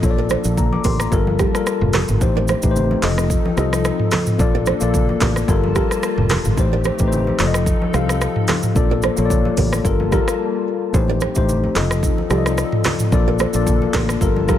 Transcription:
0.02 A#1 A#3 D4 F4 A4 C#5, kick, shaker
0.11 D5
0.17 A#4 D5, high conga
0.30 A4 C5, cross-stick, high conga, shaker
0.44 A#1, shaker
0.57 A#5, kick, low conga, shaker
0.72 D6, high conga
0.84 A1 G4 A#4 C6, kick, open hi-hat, low conga, shaker
1.00 A#5, cross-stick, shaker
1.11 G1 G3 A#3 F4 A4 A#4 A5, kick, shaker
1.27 high conga
1.39 D#4 G4, kick, cross-stick, high conga, shaker
1.53 G3 F4 A4 A#4, cross-stick, shaker
1.67 cross-stick, shaker
1.81 F1, mid tom
1.93 G4 A#4, cross-stick, clap, open hi-hat, high conga, low conga, shaker
2.08 G1, mid tom, shaker
2.20 A1 A3 C4 D#4 G4 C5, kick, shaker
2.35 A#4 D5, high conga
2.48 A4 C5, cross-stick, high conga, shaker
2.62 A1 A3 D#4 G4 B4, kick, shaker
2.71 C5
2.76 low conga, shaker
2.91 high conga
3.02 F1 F3 D#4 F4 A4 D#5, clap, open hi-hat, low conga, shaker
3.18 cross-stick, shaker
3.30 kick, shaker
3.45 high conga
3.56 C2 F3 D#4 F4 G4 A4 D#5, cross-stick, high conga, shaker
3.73 cross-stick, shaker
3.85 cross-stick, shaker
4.00 mid tom
4.11 F4 A4, cross-stick, clap, open hi-hat, high conga, low conga, shaker
4.27 mid tom, shaker
4.38 A#1 A#3 D4 F4 A4 D5, kick, shaker
4.54 A#4 D5, high conga
4.66 A4 C5, cross-stick, high conga, shaker
4.80 A#1 A#3 F4 A4 D5, shaker
4.94 kick, low conga, shaker
5.09 high conga
5.21 A1 G4 A#4, kick, clap, open hi-hat, low conga, shaker
5.36 cross-stick, shaker
5.47 G1 G3 A#3 F4 A4 A#4 A5, kick, shaker
5.64 high conga
5.75 G3 D#4 F4 G4 A4 A#4, kick, cross-stick, high conga, shaker
5.91 cross-stick, shaker
6.03 cross-stick, shaker
6.18 F1, mid tom
6.30 G4 A#4, cross-stick, clap, open hi-hat, high conga, low conga, shaker
6.45 G1, mid tom, shaker
6.56 A1 A3 C4 D#4 G4 C5, kick, shaker
6.72 A#4 D5, high conga
6.84 A4 C5, cross-stick, high conga, shaker
6.99 A1 A3 D#4 G4 B4, kick, shaker
7.08 C5
7.12 low conga, shaker
7.27 high conga
7.38 F1 F3 D#4 F4 A4 D5, clap, open hi-hat, low conga, shaker
7.47 D#5
7.54 cross-stick, shaker
7.66 kick, shaker
7.82 high conga
7.93 C2 F3 D#4 F4 G4 F5, cross-stick, high conga, shaker
8.01 A4
8.09 cross-stick, shaker
8.21 cross-stick, shaker
8.36 mid tom
8.48 F4 A4, cross-stick, clap, open hi-hat, high conga, low conga, shaker
8.63 mid tom, shaker
8.74 A#1 A#3 D4 F4 A4 D5, kick, shaker
8.90 A#4 D5, high conga
9.02 A4 C5, cross-stick, high conga, shaker
9.17 A#1 A#3 F4 A4 C#5, shaker
9.26 D5
9.30 kick, low conga, shaker
9.45 high conga
9.57 A1 G4 A#4, kick, open hi-hat, low conga, shaker
9.73 cross-stick, shaker
9.83 G1 G3 A#3 F4 A4 A#4 A5, kick, shaker
10.00 high conga
10.11 G3 D#4 F4 G4 A4 A#4, kick, cross-stick, high conga, shaker
10.28 cross-stick, shaker
10.93 A1 A3 C4 D#4 G4 C5, kick, shaker
11.08 A#4 D5, high conga
11.21 A4 C5, cross-stick, high conga, shaker
11.35 A1 A3 D#4 G4 C5, kick, shaker
11.49 low conga, shaker
11.64 high conga
11.75 F1 F3 D#4 F4 A4 D#5, clap, open hi-hat, low conga, shaker
11.91 cross-stick, shaker
12.03 kick, shaker
12.18 high conga
12.29 C2 F3 D#4 F4 G4 A4 D5, cross-stick, high conga, shaker
12.38 D#5
12.46 cross-stick, shaker
12.58 cross-stick, shaker
12.72 mid tom
12.84 F4 A4, cross-stick, clap, open hi-hat, high conga, low conga, shaker
13.00 mid tom, shaker
13.11 A#1 A#3 D4 F4 A4 D5, kick, shaker
13.27 A#4 D5, high conga
13.39 A4 C5, cross-stick, high conga, shaker
13.53 A#1 A#3 F4 A4 D5, shaker
13.67 kick, low conga, shaker
13.82 high conga
13.94 A1 G4 A#4, kick, clap, open hi-hat, low conga, shaker
14.09 cross-stick, shaker
14.20 G1 G3 A#3 F4 A4 A#4 A5, kick, shaker
14.36 high conga
14.47 G3 D#4 F4 G4 A4 A#4, kick, cross-stick, high conga, shaker

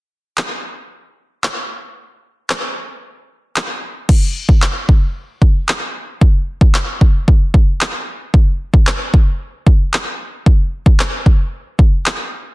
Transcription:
0.37 clap
1.44 clap
2.50 clap
3.56 clap
4.09 kick, crash
4.49 kick
4.62 clap
4.89 kick
5.42 kick
5.68 clap
6.21 kick
6.61 kick
6.74 clap
7.01 kick
7.28 kick
7.54 kick
7.81 clap
8.34 kick
8.74 kick
8.87 clap
9.14 kick
9.67 kick
9.93 clap
10.46 kick
10.86 kick
10.99 clap
11.26 kick
11.79 kick
12.06 clap

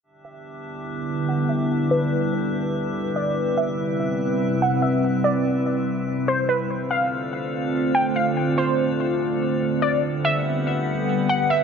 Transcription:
0.03 D3 G3 B3 D4 E4 G4 B4 E5
0.25 E5
1.29 F#5
1.49 E5
1.91 B4
3.16 D5
3.37 C3 C4 E4 B4
3.58 E5
4.62 F#5
4.82 E5
5.24 D5
6.28 C5
6.49 B4
6.70 D3 A3 C4 D4 F4 A4 C5 F5
6.91 F5
7.95 G5
8.16 F5
8.58 C5
9.82 D5
10.03 G3 B3 G4 B4 F#5
10.25 E5
11.29 F#5
11.50 E5

